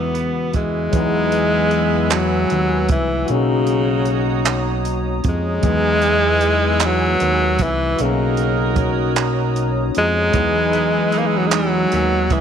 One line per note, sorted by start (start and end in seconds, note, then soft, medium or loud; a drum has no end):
0.00 0.89 E2 medium
0.00 0.93 C#3 medium
0.00 0.55 E3 medium
0.00 0.87 E3 medium
0.00 0.89 G#3 medium
0.00 0.14 B3 soft
0.00 0.55 B3 medium
0.00 0.90 B3 medium
0.00 1.52 D#4 medium
0.00 0.92 F#4 medium
0.14 1.52 B3 soft
0.14 closed hi-hat medium
0.53 1.52 E3 medium
0.53 2.14 G#3 loud
0.53 kick medium
0.53 closed hi-hat soft
0.91 2.46 E2 loud
0.91 3.23 F#3 medium
0.91 2.85 G#3 medium
0.91 3.25 G#3 medium
0.91 2.86 B3 medium
0.91 2.86 E4 medium
0.91 3.26 B4 medium
0.91 3.26 G#5 medium
0.91 3.25 E6 medium
0.91 kick loud
0.91 closed hi-hat medium
0.97 3.26 B3 medium
0.97 3.28 D#4 medium
1.32 closed hi-hat soft
1.71 closed hi-hat soft
2.10 2.90 F#3 loud
2.10 clap loud
2.10 closed hi-hat medium
2.50 2.92 D#2 medium
2.50 closed hi-hat medium
2.89 3.25 C2 medium
2.89 3.33 E3 medium
2.89 kick medium
2.89 closed hi-hat medium
3.25 5.60 A#3 medium
3.25 5.21 C#4 medium
3.25 5.21 D#4 medium
3.25 5.58 F#4 medium
3.25 5.21 F#4 medium
3.25 5.61 A#5 medium
3.25 5.62 D#6 medium
3.25 closed hi-hat medium
3.29 5.21 B1 loud
3.29 4.47 C#3 loud
3.29 5.61 C#4 medium
3.29 5.62 C#5 medium
3.34 5.63 D#4 medium
3.67 closed hi-hat medium
4.05 closed hi-hat soft
4.45 clap loud
4.45 closed hi-hat medium
4.85 closed hi-hat medium
5.24 5.60 F2 medium
5.24 kick medium
5.24 closed hi-hat medium
5.29 6.87 G#3 loud
5.61 7.17 E2 loud
5.61 7.94 F#3 medium
5.61 7.56 G#3 medium
5.61 7.95 G#3 medium
5.61 7.56 E4 medium
5.61 7.56 G#4 medium
5.61 7.96 B4 medium
5.61 7.96 G#5 medium
5.61 7.96 E6 medium
5.61 kick loud
5.61 closed hi-hat medium
5.67 7.96 B3 medium
5.67 7.98 D#4 medium
6.02 closed hi-hat medium
6.41 closed hi-hat medium
6.80 clap loud
6.80 closed hi-hat medium
6.85 7.64 F#3 loud
7.20 7.62 D#2 medium
7.20 closed hi-hat medium
7.59 7.95 C2 medium
7.59 kick medium
7.59 closed hi-hat medium
7.63 8.03 E3 loud
7.96 10.30 A#3 medium
7.96 9.91 D#4 medium
7.96 10.29 F#4 medium
7.96 9.91 F#4 medium
7.96 9.91 A#4 medium
7.96 10.32 C#5 medium
7.96 10.32 A#5 medium
7.96 10.32 D#6 medium
7.96 closed hi-hat medium
8.00 9.92 B1 loud
8.00 9.18 C#3 medium
8.00 10.32 C#4 medium
8.05 10.33 D#4 medium
8.37 closed hi-hat medium
8.76 kick medium
8.76 closed hi-hat soft
9.16 clap loud
9.16 closed hi-hat medium
9.56 closed hi-hat medium
9.95 10.31 F2 loud
9.95 11.20 G#3 loud
9.95 closed hi-hat medium
10.30 12.41 E3 medium
10.30 12.41 F#3 medium
10.30 12.41 G#3 medium
10.30 12.26 D#4 medium
10.30 12.26 G#4 medium
10.30 12.26 B4 medium
10.30 12.41 G#5 medium
10.30 12.41 E6 medium
10.30 kick loud
10.30 closed hi-hat medium
10.34 11.87 E2 loud
10.34 12.41 B3 medium
10.34 12.41 D#4 medium
10.34 11.13 D#4 medium
10.39 12.41 D#4 medium
10.73 11.93 B3 medium
10.73 closed hi-hat soft
11.12 12.41 D#4 medium
11.12 closed hi-hat soft
11.19 11.28 A#3 medium
11.27 11.39 G#3 medium
11.37 11.48 F#3 medium
11.47 11.56 G#3 medium
11.51 12.35 F#3 loud
11.51 12.30 G#3 medium
11.51 clap loud
11.51 closed hi-hat medium
11.92 12.33 D#2 medium
11.92 12.41 B3 medium
11.92 closed hi-hat medium
12.30 12.41 C2 medium
12.30 12.41 E3 loud
12.30 12.41 G#3 medium
12.30 kick medium
12.30 closed hi-hat medium